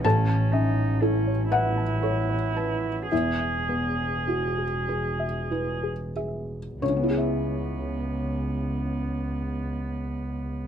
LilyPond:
<<
  \new Staff \with { instrumentName = "Synth pluck" } { \time 6/8 \key cis \minor \tempo 4. = 33 a'16 a''16 e''16 r16 a'16 cis''16 e''16 a''16 a'16 cis''16 a''16 r16 | e'16 e''16 b'16 r16 e'16 gis'16 b'16 e''16 e'16 gis'16 e''16 r16 | r2. | }
  \new Staff \with { instrumentName = "Felt piano" } { \time 6/8 \key cis \minor << { a''4. fis''4. | e''2~ e''8 r8 | <cis, cis b e' gis' cis'' e''>2. | } \\ { a,,8 cis'8 e'8 b'8 cis''8 b'8 | e,8 b8 fis'8 gis'8 b'8 gis'8 | r2. | } >> }
  \new Staff \with { instrumentName = "Cello" } { \time 6/8 \key cis \minor cis'8 dis'8 cis'8 e'4. | gis'2~ gis'16 r8. | b2. | }
  \new Staff \with { instrumentName = "Double bass" } { \clef bass \time 6/8 \key cis \minor a,,2. | e,,2. | cis,2. | }
>>